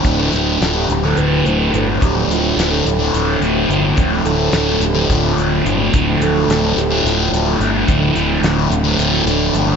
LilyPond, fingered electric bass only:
\new Staff \with { instrumentName = "Fingered electric bass" } { \clef bass \time 7/8 \key d \minor \tempo 4 = 107 d,,8 d,,8 d,,8 d,,8 d,,8 d,,8 g,,8 | d,,8 d,,8 d,,8 d,,8 d,,8 d,,8 g,,8 | d,,8 d,,8 d,,8 d,,8 d,,8 d,,8 g,,8 | d,,8 d,,8 d,,8 d,,8 d,,8 d,,8 g,,8 |
d,,8 d,,8 d,,8 d,,8 d,,8 d,,8 g,,8 | }